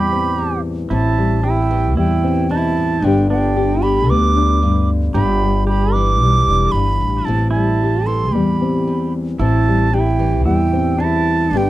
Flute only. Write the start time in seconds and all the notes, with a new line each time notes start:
Already playing: B5
0.92 A5
1.44 G5
1.98 G5
2.51 A5
3.05 G5
3.31 G5
3.83 B5
4.10 D6
5.15 B5
5.68 B5
5.92 D6
6.72 B5
7.25 A5
7.51 A5
8.07 C6
8.33 B5
9.40 A5
9.94 G5
10.46 G5
11.00 A5
11.53 G5 A5